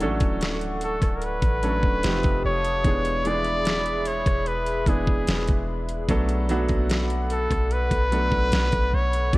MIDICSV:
0, 0, Header, 1, 6, 480
1, 0, Start_track
1, 0, Tempo, 810811
1, 1684, Time_signature, 4, 2, 24, 8
1, 5551, End_track
2, 0, Start_track
2, 0, Title_t, "Analog synth pad"
2, 0, Program_c, 0, 89
2, 0, Note_on_c, 0, 69, 82
2, 0, Note_on_c, 0, 78, 77
2, 0, Note_on_c, 0, 85, 73
2, 1190, Note_off_c, 0, 78, 0
2, 1190, Note_off_c, 0, 85, 0
2, 1191, Note_off_c, 0, 69, 0
2, 1204, Note_on_c, 0, 77, 77
2, 1204, Note_on_c, 0, 87, 88
2, 1205, Note_on_c, 0, 67, 82
2, 1206, Note_on_c, 0, 81, 70
2, 1679, Note_off_c, 0, 77, 0
2, 1679, Note_off_c, 0, 87, 0
2, 1680, Note_off_c, 0, 67, 0
2, 1680, Note_off_c, 0, 81, 0
2, 1685, Note_on_c, 0, 68, 80
2, 1686, Note_on_c, 0, 76, 74
2, 1687, Note_on_c, 0, 83, 77
2, 3585, Note_off_c, 0, 68, 0
2, 3586, Note_off_c, 0, 76, 0
2, 3586, Note_off_c, 0, 83, 0
2, 3603, Note_on_c, 0, 69, 82
2, 3603, Note_on_c, 0, 83, 75
2, 3604, Note_on_c, 0, 78, 74
2, 5504, Note_off_c, 0, 69, 0
2, 5505, Note_off_c, 0, 78, 0
2, 5523, Note_on_c, 0, 76, 76
2, 5525, Note_on_c, 0, 67, 85
2, 5551, Note_off_c, 0, 67, 0
2, 5551, Note_off_c, 0, 76, 0
2, 5551, Note_off_c, 0, 83, 0
2, 5551, End_track
3, 0, Start_track
3, 0, Title_t, "Trumpet"
3, 0, Program_c, 1, 56
3, 498, Note_on_c, 1, 69, 85
3, 690, Note_on_c, 1, 70, 72
3, 699, Note_off_c, 1, 69, 0
3, 736, Note_on_c, 1, 71, 99
3, 745, Note_off_c, 1, 70, 0
3, 1450, Note_off_c, 1, 71, 0
3, 1453, Note_on_c, 1, 73, 111
3, 1934, Note_on_c, 1, 74, 125
3, 1943, Note_off_c, 1, 73, 0
3, 2411, Note_on_c, 1, 73, 103
3, 2420, Note_off_c, 1, 74, 0
3, 2651, Note_on_c, 1, 71, 109
3, 2660, Note_off_c, 1, 73, 0
3, 2892, Note_on_c, 1, 68, 91
3, 2900, Note_off_c, 1, 71, 0
3, 3368, Note_off_c, 1, 68, 0
3, 4332, Note_on_c, 1, 69, 98
3, 4573, Note_on_c, 1, 71, 114
3, 4582, Note_off_c, 1, 69, 0
3, 5295, Note_on_c, 1, 73, 106
3, 5304, Note_off_c, 1, 71, 0
3, 5543, Note_off_c, 1, 73, 0
3, 5551, End_track
4, 0, Start_track
4, 0, Title_t, "Grand piano"
4, 0, Program_c, 2, 0
4, 0, Control_c, 2, 64, 127
4, 0, Note_on_c, 2, 54, 87
4, 0, Note_on_c, 2, 57, 79
4, 0, Note_on_c, 2, 61, 83
4, 0, Note_on_c, 2, 62, 85
4, 0, Note_on_c, 2, 69, 101
4, 4, Note_on_c, 2, 52, 75
4, 7, Note_off_c, 2, 57, 0
4, 7, Note_on_c, 2, 57, 86
4, 8, Note_off_c, 2, 61, 0
4, 8, Note_on_c, 2, 61, 84
4, 12, Note_off_c, 2, 62, 0
4, 12, Note_on_c, 2, 62, 85
4, 16, Note_off_c, 2, 69, 0
4, 16, Note_on_c, 2, 69, 104
4, 43, Note_off_c, 2, 54, 0
4, 43, Note_on_c, 2, 54, 90
4, 758, Note_off_c, 2, 57, 0
4, 759, Note_off_c, 2, 61, 0
4, 761, Note_off_c, 2, 62, 0
4, 763, Note_off_c, 2, 69, 0
4, 776, Note_off_c, 2, 54, 0
4, 964, Note_on_c, 2, 54, 69
4, 968, Note_on_c, 2, 57, 67
4, 969, Note_on_c, 2, 61, 67
4, 972, Note_on_c, 2, 62, 63
4, 976, Note_on_c, 2, 69, 80
4, 1196, Note_off_c, 2, 57, 0
4, 1203, Note_on_c, 2, 53, 74
4, 1204, Note_off_c, 2, 54, 0
4, 1205, Note_on_c, 2, 57, 72
4, 1207, Note_off_c, 2, 61, 0
4, 1208, Note_off_c, 2, 62, 0
4, 1208, Note_on_c, 2, 60, 69
4, 1210, Note_off_c, 2, 69, 0
4, 1212, Note_on_c, 2, 63, 71
4, 1213, Control_c, 2, 64, 0
4, 1214, Note_off_c, 2, 52, 0
4, 1215, Note_on_c, 2, 67, 86
4, 1303, Control_c, 2, 64, 127
4, 1587, Note_off_c, 2, 53, 0
4, 1588, Note_off_c, 2, 57, 0
4, 1590, Note_off_c, 2, 60, 0
4, 1592, Note_off_c, 2, 63, 0
4, 1593, Note_off_c, 2, 67, 0
4, 1684, Note_on_c, 2, 52, 74
4, 1687, Note_on_c, 2, 56, 69
4, 1690, Note_on_c, 2, 59, 72
4, 1691, Control_c, 2, 64, 0
4, 1693, Note_on_c, 2, 62, 72
4, 1694, Note_on_c, 2, 68, 89
4, 1790, Control_c, 2, 64, 127
4, 1872, Note_off_c, 2, 52, 0
4, 1874, Note_off_c, 2, 56, 0
4, 1875, Note_off_c, 2, 59, 0
4, 1877, Note_off_c, 2, 62, 0
4, 1877, Note_off_c, 2, 68, 0
4, 1924, Note_on_c, 2, 52, 75
4, 1926, Note_on_c, 2, 56, 68
4, 1930, Note_on_c, 2, 59, 70
4, 1933, Note_on_c, 2, 62, 76
4, 1936, Note_on_c, 2, 68, 86
4, 2677, Note_off_c, 2, 52, 0
4, 2678, Note_off_c, 2, 56, 0
4, 2680, Note_off_c, 2, 59, 0
4, 2682, Note_off_c, 2, 62, 0
4, 2683, Note_off_c, 2, 68, 0
4, 2885, Note_on_c, 2, 52, 72
4, 2888, Note_on_c, 2, 56, 66
4, 2890, Note_on_c, 2, 59, 70
4, 2895, Note_on_c, 2, 62, 69
4, 2897, Note_on_c, 2, 71, 81
4, 3449, Note_off_c, 2, 52, 0
4, 3451, Note_off_c, 2, 56, 0
4, 3452, Note_off_c, 2, 59, 0
4, 3454, Note_off_c, 2, 62, 0
4, 3455, Note_off_c, 2, 71, 0
4, 3604, Note_on_c, 2, 54, 96
4, 3608, Note_on_c, 2, 57, 90
4, 3610, Note_on_c, 2, 59, 88
4, 3611, Control_c, 2, 64, 0
4, 3613, Note_on_c, 2, 62, 80
4, 3615, Note_on_c, 2, 69, 101
4, 3714, Control_c, 2, 64, 127
4, 3792, Note_off_c, 2, 54, 0
4, 3794, Note_off_c, 2, 57, 0
4, 3795, Note_off_c, 2, 59, 0
4, 3796, Note_off_c, 2, 62, 0
4, 3798, Note_off_c, 2, 69, 0
4, 3845, Note_on_c, 2, 54, 95
4, 3848, Note_on_c, 2, 57, 90
4, 3851, Note_on_c, 2, 59, 86
4, 3853, Note_on_c, 2, 62, 85
4, 3856, Note_on_c, 2, 66, 102
4, 4597, Note_off_c, 2, 54, 0
4, 4599, Note_off_c, 2, 57, 0
4, 4600, Note_off_c, 2, 59, 0
4, 4601, Note_off_c, 2, 62, 0
4, 4603, Note_off_c, 2, 66, 0
4, 4804, Note_on_c, 2, 54, 76
4, 4806, Note_on_c, 2, 57, 67
4, 4809, Note_on_c, 2, 59, 69
4, 4813, Note_on_c, 2, 62, 68
4, 4816, Note_on_c, 2, 69, 78
4, 5369, Note_off_c, 2, 54, 0
4, 5370, Note_off_c, 2, 57, 0
4, 5371, Note_off_c, 2, 59, 0
4, 5373, Note_off_c, 2, 62, 0
4, 5375, Note_off_c, 2, 69, 0
4, 5525, Note_on_c, 2, 52, 81
4, 5529, Note_on_c, 2, 55, 69
4, 5532, Control_c, 2, 64, 0
4, 5532, Note_on_c, 2, 59, 69
4, 5551, Note_off_c, 2, 52, 0
4, 5551, Note_off_c, 2, 55, 0
4, 5551, Note_off_c, 2, 59, 0
4, 5551, End_track
5, 0, Start_track
5, 0, Title_t, "808-style bass"
5, 0, Program_c, 3, 38
5, 9, Note_on_c, 3, 33, 103
5, 120, Note_off_c, 3, 33, 0
5, 124, Note_on_c, 3, 26, 99
5, 585, Note_off_c, 3, 26, 0
5, 605, Note_on_c, 3, 26, 99
5, 835, Note_off_c, 3, 26, 0
5, 844, Note_on_c, 3, 33, 101
5, 1074, Note_off_c, 3, 33, 0
5, 1084, Note_on_c, 3, 26, 104
5, 1199, Note_off_c, 3, 26, 0
5, 1209, Note_on_c, 3, 29, 103
5, 1322, Note_off_c, 3, 29, 0
5, 1329, Note_on_c, 3, 29, 109
5, 1442, Note_off_c, 3, 29, 0
5, 1450, Note_on_c, 3, 29, 106
5, 1677, Note_off_c, 3, 29, 0
5, 1686, Note_on_c, 3, 28, 115
5, 2501, Note_off_c, 3, 28, 0
5, 2525, Note_on_c, 3, 28, 101
5, 2870, Note_off_c, 3, 28, 0
5, 2881, Note_on_c, 3, 28, 107
5, 3113, Note_off_c, 3, 28, 0
5, 3126, Note_on_c, 3, 28, 103
5, 3240, Note_off_c, 3, 28, 0
5, 3249, Note_on_c, 3, 28, 102
5, 3592, Note_off_c, 3, 28, 0
5, 3605, Note_on_c, 3, 35, 117
5, 3950, Note_off_c, 3, 35, 0
5, 3964, Note_on_c, 3, 35, 98
5, 4425, Note_off_c, 3, 35, 0
5, 4446, Note_on_c, 3, 35, 103
5, 4675, Note_off_c, 3, 35, 0
5, 4685, Note_on_c, 3, 35, 98
5, 4915, Note_off_c, 3, 35, 0
5, 4926, Note_on_c, 3, 35, 104
5, 5040, Note_off_c, 3, 35, 0
5, 5047, Note_on_c, 3, 35, 107
5, 5161, Note_off_c, 3, 35, 0
5, 5169, Note_on_c, 3, 35, 107
5, 5282, Note_off_c, 3, 35, 0
5, 5289, Note_on_c, 3, 35, 100
5, 5517, Note_off_c, 3, 35, 0
5, 5526, Note_on_c, 3, 31, 115
5, 5551, Note_off_c, 3, 31, 0
5, 5551, End_track
6, 0, Start_track
6, 0, Title_t, "Drums"
6, 3, Note_on_c, 9, 42, 66
6, 62, Note_off_c, 9, 42, 0
6, 120, Note_on_c, 9, 42, 54
6, 123, Note_on_c, 9, 36, 103
6, 179, Note_off_c, 9, 42, 0
6, 182, Note_off_c, 9, 36, 0
6, 243, Note_on_c, 9, 42, 75
6, 252, Note_on_c, 9, 38, 102
6, 302, Note_off_c, 9, 42, 0
6, 312, Note_off_c, 9, 38, 0
6, 363, Note_on_c, 9, 42, 46
6, 422, Note_off_c, 9, 42, 0
6, 480, Note_on_c, 9, 42, 78
6, 540, Note_off_c, 9, 42, 0
6, 603, Note_on_c, 9, 36, 91
6, 605, Note_on_c, 9, 42, 56
6, 609, Note_on_c, 9, 37, 66
6, 662, Note_off_c, 9, 36, 0
6, 664, Note_off_c, 9, 42, 0
6, 668, Note_off_c, 9, 37, 0
6, 720, Note_on_c, 9, 42, 65
6, 780, Note_off_c, 9, 42, 0
6, 841, Note_on_c, 9, 42, 51
6, 842, Note_on_c, 9, 36, 99
6, 901, Note_off_c, 9, 36, 0
6, 901, Note_off_c, 9, 42, 0
6, 964, Note_on_c, 9, 42, 72
6, 1023, Note_off_c, 9, 42, 0
6, 1083, Note_on_c, 9, 36, 94
6, 1142, Note_off_c, 9, 36, 0
6, 1202, Note_on_c, 9, 42, 87
6, 1209, Note_on_c, 9, 38, 114
6, 1261, Note_off_c, 9, 42, 0
6, 1269, Note_off_c, 9, 38, 0
6, 1322, Note_on_c, 9, 42, 48
6, 1327, Note_on_c, 9, 36, 96
6, 1381, Note_off_c, 9, 42, 0
6, 1387, Note_off_c, 9, 36, 0
6, 1566, Note_on_c, 9, 42, 63
6, 1625, Note_off_c, 9, 42, 0
6, 1684, Note_on_c, 9, 36, 116
6, 1684, Note_on_c, 9, 42, 66
6, 1743, Note_off_c, 9, 36, 0
6, 1743, Note_off_c, 9, 42, 0
6, 1804, Note_on_c, 9, 42, 54
6, 1864, Note_off_c, 9, 42, 0
6, 1924, Note_on_c, 9, 42, 62
6, 1983, Note_off_c, 9, 42, 0
6, 2040, Note_on_c, 9, 42, 56
6, 2099, Note_off_c, 9, 42, 0
6, 2163, Note_on_c, 9, 42, 77
6, 2172, Note_on_c, 9, 38, 107
6, 2222, Note_off_c, 9, 42, 0
6, 2231, Note_off_c, 9, 38, 0
6, 2283, Note_on_c, 9, 42, 47
6, 2343, Note_off_c, 9, 42, 0
6, 2401, Note_on_c, 9, 42, 78
6, 2460, Note_off_c, 9, 42, 0
6, 2523, Note_on_c, 9, 36, 94
6, 2526, Note_on_c, 9, 42, 54
6, 2529, Note_on_c, 9, 37, 70
6, 2582, Note_off_c, 9, 36, 0
6, 2585, Note_off_c, 9, 42, 0
6, 2589, Note_off_c, 9, 37, 0
6, 2641, Note_on_c, 9, 42, 61
6, 2701, Note_off_c, 9, 42, 0
6, 2762, Note_on_c, 9, 42, 54
6, 2821, Note_off_c, 9, 42, 0
6, 2880, Note_on_c, 9, 36, 103
6, 2884, Note_on_c, 9, 42, 72
6, 2939, Note_off_c, 9, 36, 0
6, 2943, Note_off_c, 9, 42, 0
6, 3003, Note_on_c, 9, 36, 96
6, 3062, Note_off_c, 9, 36, 0
6, 3122, Note_on_c, 9, 42, 89
6, 3129, Note_on_c, 9, 38, 117
6, 3181, Note_off_c, 9, 42, 0
6, 3188, Note_off_c, 9, 38, 0
6, 3241, Note_on_c, 9, 42, 50
6, 3247, Note_on_c, 9, 36, 97
6, 3300, Note_off_c, 9, 42, 0
6, 3307, Note_off_c, 9, 36, 0
6, 3485, Note_on_c, 9, 42, 59
6, 3544, Note_off_c, 9, 42, 0
6, 3604, Note_on_c, 9, 36, 115
6, 3604, Note_on_c, 9, 42, 67
6, 3663, Note_off_c, 9, 36, 0
6, 3663, Note_off_c, 9, 42, 0
6, 3723, Note_on_c, 9, 42, 57
6, 3782, Note_off_c, 9, 42, 0
6, 3843, Note_on_c, 9, 42, 70
6, 3902, Note_off_c, 9, 42, 0
6, 3958, Note_on_c, 9, 42, 51
6, 3962, Note_on_c, 9, 36, 104
6, 4017, Note_off_c, 9, 42, 0
6, 4022, Note_off_c, 9, 36, 0
6, 4082, Note_on_c, 9, 42, 76
6, 4091, Note_on_c, 9, 38, 104
6, 4141, Note_off_c, 9, 42, 0
6, 4150, Note_off_c, 9, 38, 0
6, 4203, Note_on_c, 9, 42, 50
6, 4262, Note_off_c, 9, 42, 0
6, 4322, Note_on_c, 9, 42, 78
6, 4381, Note_off_c, 9, 42, 0
6, 4444, Note_on_c, 9, 36, 91
6, 4447, Note_on_c, 9, 42, 53
6, 4451, Note_on_c, 9, 37, 63
6, 4503, Note_off_c, 9, 36, 0
6, 4506, Note_off_c, 9, 42, 0
6, 4510, Note_off_c, 9, 37, 0
6, 4563, Note_on_c, 9, 42, 63
6, 4622, Note_off_c, 9, 42, 0
6, 4684, Note_on_c, 9, 36, 98
6, 4685, Note_on_c, 9, 42, 57
6, 4743, Note_off_c, 9, 36, 0
6, 4744, Note_off_c, 9, 42, 0
6, 4808, Note_on_c, 9, 42, 68
6, 4867, Note_off_c, 9, 42, 0
6, 4924, Note_on_c, 9, 36, 93
6, 4984, Note_off_c, 9, 36, 0
6, 5044, Note_on_c, 9, 42, 87
6, 5051, Note_on_c, 9, 38, 112
6, 5103, Note_off_c, 9, 42, 0
6, 5110, Note_off_c, 9, 38, 0
6, 5164, Note_on_c, 9, 42, 49
6, 5168, Note_on_c, 9, 36, 99
6, 5223, Note_off_c, 9, 42, 0
6, 5227, Note_off_c, 9, 36, 0
6, 5406, Note_on_c, 9, 42, 63
6, 5466, Note_off_c, 9, 42, 0
6, 5524, Note_on_c, 9, 36, 119
6, 5524, Note_on_c, 9, 42, 64
6, 5551, Note_off_c, 9, 36, 0
6, 5551, Note_off_c, 9, 42, 0
6, 5551, End_track
0, 0, End_of_file